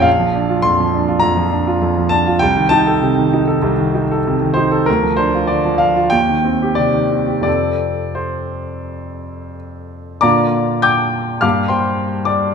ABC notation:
X:1
M:4/4
L:1/16
Q:1/4=97
K:Bb
V:1 name="Grand piano"
f4 c'4 b6 a2 | g2 a12 c2 | B2 c2 d2 f2 g4 d4 | d4 c8 z4 |
[dbd']4 [gd'g']4 [fd'f']2 [cgc']4 [dd']2 |]
V:2 name="Grand piano" clef=bass
B,,, F, D F F,, F, D F F,, F, D F F,, F, D F | C,, E, E A C, E, E A C,, E, E A C, E, E A | D,, F, D F D, F, D F E,, E, C G C, E, C G | [F,,C,CA]16 |
[B,,D,B,F]8 [G,,G,B,G]8 |]